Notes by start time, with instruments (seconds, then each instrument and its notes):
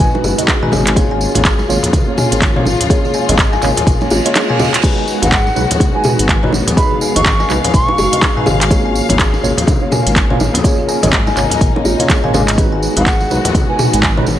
Already playing: string section D#3 G#3 B3 F#4
0.00 kick, closed hi-hat, mid tom, tambourine
0.14 tine electric piano G#3 D#4 F#4 B4, low bongo
0.23 detuned saw bass F#1, kalimba F#4, tambourine, high bongo
0.38 kalimba D#5, closed hi-hat, tambourine, high conga
0.48 kalimba G#4, kick, clap, closed hi-hat, tambourine, low bongo
0.62 detuned saw bass G#1, tine electric piano G#3 D#4 F#4 B4, kalimba G#5, mid tom
0.72 detuned saw bass G#1, kalimba C#5, tambourine, high bongo, low bongo, high conga
0.87 clap, closed hi-hat, tambourine
0.96 string section C#3 F3 A#3 F4, tine electric piano A#3 C#4 F4 C#5, kalimba G#4, kick, closed hi-hat, tambourine, high bongo
1.11 kalimba G#5
1.21 tambourine
1.35 detuned saw bass G#1, tine electric piano A#3 C#4 F4 C#5, closed hi-hat, tambourine, low bongo, low conga
1.45 kick, clap, closed hi-hat, tambourine
1.59 tambourine, low bongo
1.69 detuned saw bass G#1, tine electric piano A#3 C#4 F4 C#5, kalimba C#5, tambourine, high conga
1.83 closed hi-hat, tambourine, low conga
1.93 kick, closed hi-hat, tambourine, low bongo, high conga
2.08 tine electric piano A#3 C#4 F4 C#5
2.17 kalimba G#5, mid tom, tambourine, high bongo, low bongo, high conga
2.32 detuned saw bass G#1, closed hi-hat, tambourine
2.42 kick, clap, closed hi-hat, tambourine
2.56 tine electric piano A#3 C#4 F4 C#5, kalimba C#5, mid tom, high conga
2.65 detuned saw bass G#1, tambourine, low bongo
2.80 closed hi-hat, tambourine, low conga
2.90 string section G#3, tine electric piano A#3 C#4 F4 C#5, kalimba G#4, kick, closed hi-hat, tambourine, high bongo
3.04 kalimba G#4, tambourine, high conga
3.14 kalimba G#5, tambourine
3.29 detuned saw bass G#1, tine electric piano A#3 C#4 F4 C#5, kalimba D#5, closed hi-hat, tambourine, low bongo, high conga, low conga
3.38 kick, clap, closed hi-hat, tambourine
3.53 kalimba G#5, tambourine, low bongo
3.62 detuned saw bass G#1, tine electric piano A#3 C#4 F4 C#5, kalimba A#4, clap, tambourine, high conga
3.76 kalimba G#5, closed hi-hat, tambourine, low conga
3.87 detuned saw bass G#1, kick, closed hi-hat, mid tom, tambourine, reverse cymbal
4.01 tine electric piano A#3 C#4 F4 C#5, tambourine, low bongo
4.10 detuned saw bass G#1, kalimba F4, tambourine, high bongo
4.25 tine electric piano A#3 C#4 F4 C#5, kalimba D#5, closed hi-hat, tambourine
4.35 kalimba G#4, clap, closed hi-hat, tambourine, low bongo
4.50 tine electric piano A#3 C#4 F4 C#5, kalimba G#5, mid tom
4.59 tine electric piano A#3 C#4 F4 D#5, kalimba C#5, tambourine, high bongo, low bongo, high conga
4.74 clap, closed hi-hat, tambourine
4.83 string section D#3 B3 F#4, tine electric piano G#3 D#4 F#4 B4, kalimba G#4, kick, closed hi-hat, crash, tambourine, high bongo
4.98 kalimba G#5
5.08 tambourine
5.22 detuned saw bass G#1, tine electric piano G#3 D#4 F#4 B4, bansuri F#5, closed hi-hat, tambourine, low bongo, low conga
5.32 kalimba G#4, kick, clap, closed hi-hat, tambourine
5.47 tambourine, low bongo
5.56 detuned saw bass B1, tine electric piano G#3 D#4 F#4 B4, kalimba C#5, tambourine, high conga
5.71 closed hi-hat, tambourine, low conga
5.80 kick, closed hi-hat, tambourine, low bongo, high conga
5.95 tine electric piano G#3 D#4 F#4 B4, bansuri G#5
6.04 kalimba G#5, mid tom, tambourine, high bongo, low bongo, high conga
6.19 detuned saw bass G#1, closed hi-hat, tambourine
6.29 kick, clap, closed hi-hat, tambourine
6.43 tine electric piano G#3 D#4 F#4 B4, kalimba C#5, mid tom, high conga
6.53 detuned saw bass G#1, tambourine, low bongo
6.67 closed hi-hat, tambourine, low conga
6.77 tine electric piano G#3 D#4 F#4 B4, kalimba G#4, string section F5, bansuri B5, kick, closed hi-hat, tambourine, high bongo
6.91 kalimba G#4, high conga
7.01 kalimba G#5, tambourine
7.16 detuned saw bass G#1, tine electric piano G#3 D#4 F#4 B4, kalimba D#5, bansuri C#6, closed hi-hat, tambourine, low bongo, low conga
7.25 kick, clap, closed hi-hat, tambourine
7.40 kalimba G#5, tambourine, low bongo
7.50 detuned saw bass B1, tine electric piano G#3 D#4 F#4 B4, kalimba B4, clap, tambourine, high conga
7.64 kalimba G#5, closed hi-hat, tambourine, low conga
7.74 detuned saw bass G#1, bansuri C#6, kick, closed hi-hat, mid tom, tambourine
7.88 tine electric piano G#3 D#4 F#4 B4, low bongo
7.98 detuned saw bass F#1, kalimba F#4, tambourine, high bongo
8.12 kalimba D#5, closed hi-hat, tambourine, high conga
8.22 kick, clap, closed hi-hat, tambourine, low bongo
8.37 detuned saw bass G#1, tine electric piano G#3 D#4 F#4 B4, kalimba G#5, mid tom
8.46 detuned saw bass G#1, kalimba C#5, tambourine, high bongo, low bongo, high conga
8.61 clap, closed hi-hat, tambourine
8.70 string section C#3 F3 A#3, tine electric piano A#3 C#4 F4 C#5, kalimba G#4, kick, closed hi-hat, tambourine, high bongo
8.85 kalimba G#5
8.95 tambourine
9.09 detuned saw bass G#1, tine electric piano A#3 C#4 F4 C#5, closed hi-hat, tambourine, low bongo, low conga
9.19 kalimba G#4, kick, clap, closed hi-hat, tambourine
9.34 tambourine, low bongo
9.43 detuned saw bass G#1, tine electric piano A#3 C#4 F4 C#5, kalimba C#5, tambourine, high conga
9.57 closed hi-hat, tambourine, low conga
9.67 kick, closed hi-hat, tambourine, low bongo, high conga
9.82 tine electric piano A#3 C#4 F4 C#5
9.91 kalimba G#5, mid tom, tambourine, high bongo, low bongo, high conga
10.06 detuned saw bass G#1, closed hi-hat, tambourine
10.16 kick, clap, closed hi-hat, tambourine
10.30 tine electric piano A#3 C#4 F4 C#5, kalimba C#5, mid tom, high conga
10.40 detuned saw bass G#1, tambourine, low bongo
10.54 closed hi-hat, tambourine, low conga
10.64 tine electric piano A#3 C#4 F4 C#5, string section D#4, kalimba G#4, kick, closed hi-hat, tambourine, high bongo
10.78 kalimba G#4, high conga
10.88 kalimba G#5, tambourine
11.03 detuned saw bass G#1, tine electric piano A#3 C#4 F4 C#5, kalimba D#5, closed hi-hat, tambourine, low bongo, low conga
11.12 kick, clap, closed hi-hat, tambourine
11.27 kalimba G#5, tambourine, low bongo
11.36 detuned saw bass G#1, tine electric piano A#3 C#4 F4 C#5, kalimba A#4, clap, tambourine, high conga
11.50 kalimba G#5, closed hi-hat, tambourine, low conga
11.61 detuned saw bass G#1, kick, closed hi-hat, mid tom, tambourine
11.76 tine electric piano A#3 C#4 F4 C#5, low bongo
11.85 detuned saw bass G#1, kalimba F4, tambourine, high bongo
11.99 tine electric piano A#3 C#4 F4 C#5, kalimba D#5, closed hi-hat, tambourine, high conga
12.09 kalimba G#4, kick, clap, closed hi-hat, tambourine, low bongo
12.23 detuned saw bass G#1, tine electric piano A#3 C#4 F4 C#5, kalimba G#5, mid tom
12.33 detuned saw bass G#1, tine electric piano A#3 C#4 F4 D#5, kalimba C#5, tambourine, high bongo, low bongo, high conga
12.48 clap, closed hi-hat, tambourine
12.58 string section D#3 G#3 B3 F#4, tine electric piano G#3 D#4 F#4 B4, kalimba G#4, kick, closed hi-hat, tambourine, high bongo
12.72 kalimba G#5
12.83 tambourine
12.96 detuned saw bass G#1, tine electric piano G#3 D#4 F#4 B4, bansuri F#5, closed hi-hat, tambourine, low bongo, low conga
13.06 kalimba G#4, kick, clap, closed hi-hat, tambourine
13.20 tambourine, low bongo
13.30 detuned saw bass B1, tine electric piano G#3 D#4 F#4 B4, kalimba C#5, tambourine, high conga
13.45 closed hi-hat, tambourine, low conga
13.54 kick, closed hi-hat, tambourine, low bongo, high conga
13.69 tine electric piano G#3 D#4 F#4 B4, bansuri G#5
13.79 kalimba G#5, mid tom, tambourine, high bongo, low bongo, high conga
13.93 detuned saw bass G#1, bansuri G#5, closed hi-hat, tambourine
14.03 bansuri G#5, kick, clap, closed hi-hat, tambourine
14.17 tine electric piano G#3 D#4 F#4 B4, kalimba C#5, mid tom, high conga
14.27 detuned saw bass G#1, tambourine, low bongo